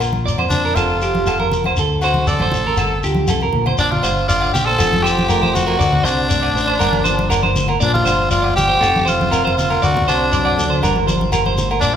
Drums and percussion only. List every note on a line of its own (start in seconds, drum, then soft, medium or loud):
0.00 low agogo medium
0.00 shekere medium
0.13 high conga medium
0.28 shekere medium
0.38 low agogo medium
0.50 low conga medium
0.50 shekere medium
0.76 low agogo medium
0.76 shekere medium
1.02 shekere medium
1.15 high conga medium
1.27 low agogo medium
1.27 shekere loud
1.40 high conga medium
1.52 low conga medium
1.52 shekere medium
1.64 high conga medium
1.64 low agogo medium
1.76 shekere medium
2.02 low agogo medium
2.02 shekere medium
2.14 high conga medium
2.14 low conga medium
2.27 shekere medium
2.39 high conga medium
2.39 low agogo medium
2.52 low conga medium
2.52 shekere medium
2.77 low agogo medium
2.77 shekere loud
3.03 shekere medium
3.15 high conga medium
3.28 high conga medium
3.28 low agogo medium
3.28 shekere loud
3.41 high conga medium
3.53 low conga medium
3.66 low conga medium
3.66 low agogo medium
3.78 shekere loud
3.92 low conga medium
4.03 low agogo medium
4.03 shekere medium
4.30 shekere loud
4.41 low agogo medium
4.55 low conga medium
4.55 shekere medium
4.78 low agogo medium
4.78 shekere loud
4.93 high conga medium
5.05 high conga medium
5.05 shekere medium
5.18 high conga medium
5.28 low agogo medium
5.28 shekere loud
5.43 high conga medium
5.55 low conga medium
5.55 shekere medium
5.67 low agogo medium
5.80 shekere loud
5.93 low conga medium
6.05 low agogo medium
6.05 shekere medium
6.30 shekere loud
6.43 low agogo medium
6.57 shekere medium
6.80 low agogo medium
6.80 shekere loud
6.93 high conga medium
7.05 high conga medium
7.05 shekere medium
7.19 high conga medium
7.30 low agogo medium
7.30 shekere loud
7.43 high conga medium
7.56 low conga medium
7.56 shekere medium
7.68 low agogo medium
7.81 shekere loud
7.95 low conga medium
8.06 low agogo medium
8.06 shekere medium
8.31 shekere loud
8.44 low agogo medium
8.58 low conga medium
8.58 shekere medium
8.83 low agogo medium
8.83 shekere loud
8.96 high conga medium
9.07 high conga medium
9.07 shekere medium
9.21 high conga medium
9.32 low agogo medium
9.32 shekere loud
9.47 high conga medium
9.59 low conga medium
9.59 shekere medium
9.71 low agogo medium
9.83 shekere loud
9.97 low conga medium
10.08 low agogo medium
10.08 shekere medium
10.32 shekere loud
10.45 low agogo medium
10.59 low conga medium
10.59 shekere medium
10.83 high conga medium
10.83 low agogo medium
10.83 shekere loud
10.96 high conga medium
11.08 high conga medium
11.08 shekere medium
11.21 high conga medium
11.32 low agogo medium
11.32 shekere loud
11.46 high conga medium
11.58 low conga medium
11.58 shekere medium
11.71 low agogo medium
11.82 shekere medium